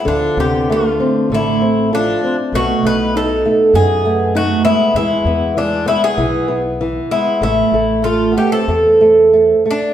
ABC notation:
X:1
M:4/4
L:1/16
Q:1/4=97
K:Am
V:1 name="Bouzouki"
D2 G2 F4 E4 D3 z | ^F2 B2 A4 ^G4 F2 E2 | E4 D2 E ^G4 z3 E2 | E4 F2 G A6- A D2 |]
V:2 name="Nylon-string guitar"
D,2 C,2 A,2 C2 D,2 C2 A,2 C2 | B,,2 A,2 ^D2 A,2 D2 A,2 D2 B,2 | E,2 B,2 E,2 B,2 E,2 B,2 E,2 B,2 | A,2 A,2 A,2 A,2 A,2 A,2 A,2 A,2 |]
V:3 name="Twelve-string acoustic guitar"
F,2 B,2 A,4 A,4 F,3 z | A,2 ^D2 D4 B,4 A,2 ^G,2 | ^G,4 G,2 G, B,4 z3 G,2 | A,4 A,2 B, C6- C z2 |]
V:4 name="Upright bass" clef=bass
D,,2 D,,6 A,,,8 | B,,,2 B,,,6 ^F,,8 | E,,2 E,,6 B,,,8 | A,,,2 A,,,6 E,,8 |]